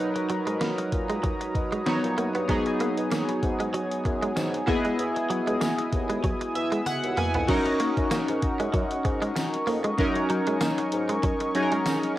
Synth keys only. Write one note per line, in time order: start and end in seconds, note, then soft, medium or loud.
0.00 1.82 F#3 medium
0.00 1.82 D#4 medium
0.00 1.83 A#4 medium
0.00 1.82 B4 medium
1.86 2.47 F#3 medium
1.86 2.48 B3 soft
1.86 2.48 D#4 medium
1.86 2.49 C#5 medium
2.48 4.63 F#3 medium
2.48 4.64 B3 medium
2.48 4.64 D#4 medium
2.48 4.64 G#4 medium
4.67 7.13 B3 medium
4.67 7.13 E4 medium
4.67 7.14 G#4 medium
4.67 7.14 D#5 medium
6.55 6.84 E5 medium
6.86 7.15 F#5 medium
7.17 7.47 G#5 medium
7.48 9.95 C#4 medium
7.48 9.95 D#4 medium
7.48 9.94 F#4 medium
7.48 9.95 A#4 medium
9.98 11.51 F#3 medium
9.98 11.52 C#4 medium
9.98 11.52 D#4 medium
9.98 11.53 A#4 medium
11.55 12.18 F#3 medium
11.55 12.18 C#4 medium
11.55 12.18 D#4 medium
11.55 11.63 G#4 soft
11.62 12.18 A#4 medium